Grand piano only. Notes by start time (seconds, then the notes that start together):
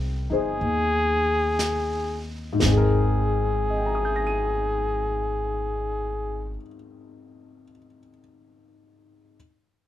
Already playing: G#3 C4 A#4 G5
0.30 D#4 G#4 C5
2.53 G#2
2.60 G#3
2.66 C4
2.72 G#4
2.77 A#4
3.70 D#5
3.78 G5
3.86 A#5
3.95 D#6
4.05 G6
4.16 A#6
4.27 D#7